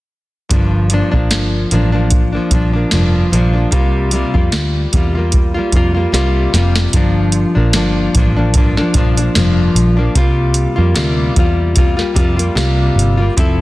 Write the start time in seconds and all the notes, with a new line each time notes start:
0.49 G1 G2 F3 A#3 D4, kick, closed hi-hat
0.90 G2 F3 A#3 D4, closed hi-hat
1.11 A#1 A#3 D4, kick
1.16 F3
1.31 G1, snare, closed hi-hat
1.70 A1 G2 F3 A#3, closed hi-hat
1.74 D4
1.92 F3 A#3 D4
2.10 kick, closed hi-hat
2.33 F3 A#3 D4
2.51 A#1 G2 F3 A#3 D4, kick, closed hi-hat
2.73 F3 A#3 D4
2.91 F1 G2 F3 A#3 D4, snare, closed hi-hat
3.31 A#1 G2 F3 A#3 D4, closed hi-hat
3.53 F3 A#3 D4
3.71 C2 C3 G3 A#3 F4, kick, closed hi-hat
4.11 C3 G3 A#3, closed hi-hat
4.15 F4
4.34 F2 G3 A#3 F4, kick
4.52 D2, snare, closed hi-hat
4.93 E2 C3 G3 A#3, kick, closed hi-hat
4.97 F4
5.15 G3 A#3 F4
5.32 kick, closed hi-hat
5.54 A#3 F4
5.59 G3
5.72 F2 C3 G3 A#3, kick, closed hi-hat
5.76 F4
5.94 A#3 F4
5.99 G3
6.12 C2 C3 G3 A#3 F4, snare, closed hi-hat
6.53 F1 C3 G3 A#3, snare, closed hi-hat
6.57 F4
6.76 snare
6.93 G1 G2 F3 A#3 D4, kick, closed hi-hat
7.32 closed hi-hat
7.55 A#1 F3 A#3 D4
7.73 G1 G2 F3 A#3 D4, snare, closed hi-hat
8.15 A1 G2 F3 A#3, kick, closed hi-hat
8.19 D4
8.36 F3 A#3 D4
8.54 G2 F3 A#3, kick, closed hi-hat
8.58 D4
8.77 F3 A#3 D4, snare
8.94 A#1 G2 F3 A#3, kick, closed hi-hat
8.98 D4
9.17 F3 A#3 D4, closed hi-hat
9.35 F1 G2 F3 A#3 D4, snare, closed hi-hat
9.75 A#1, closed hi-hat
9.97 F3 A#3 D4
10.15 C2 C3 G3 A#3 F4, kick, closed hi-hat
10.54 closed hi-hat
10.76 F2 G3 A#3 F4
10.95 D2 C3 G3 A#3 F4, snare, closed hi-hat
11.35 E2 C3 G3 A#3 F4, kick, closed hi-hat
11.75 C3 G3 A#3 F4, kick, closed hi-hat
11.97 A#3 F4, snare
12.01 G3
12.14 F2 C3 G3 A#3 F4, kick, closed hi-hat
12.37 G3 A#3 F4, closed hi-hat
12.55 C2 C3 G3 A#3 F4, snare, closed hi-hat
12.96 G1, closed hi-hat
13.17 A#3 F4
13.22 G3
13.37 F1 F3 C4 E4 A4, kick, closed hi-hat